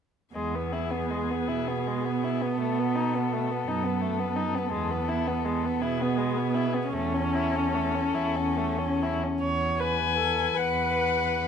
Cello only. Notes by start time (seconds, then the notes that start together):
0.35 E2
1.49 B2
2.59 B2
3.65 F#2
4.71 E2
5.81 B2
6.93 E2
8.13 E2
9.41 E2
10.53 E2